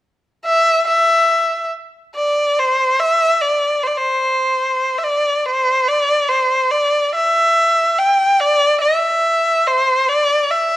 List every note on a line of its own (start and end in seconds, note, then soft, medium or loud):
0.45 0.84 E5 medium
0.87 1.67 E5 medium
2.15 2.61 D5 medium
2.59 3.01 C5 medium
3.00 3.42 E5 medium
3.41 3.85 D5 medium
3.83 3.88 C5 medium
3.83 3.99 D5 medium
3.97 4.99 C5 medium
4.98 5.05 E5 medium
5.03 5.47 D5 medium
5.45 5.89 C5 medium
5.88 6.30 D5 medium
6.28 6.72 C5 medium
6.71 7.13 D5 medium
7.15 8.00 E5 medium
7.98 8.41 G5 medium
8.40 8.80 D5 medium
8.81 9.68 E5 medium
9.67 10.09 C5 medium
10.08 10.52 D5 medium
10.50 10.77 E5 medium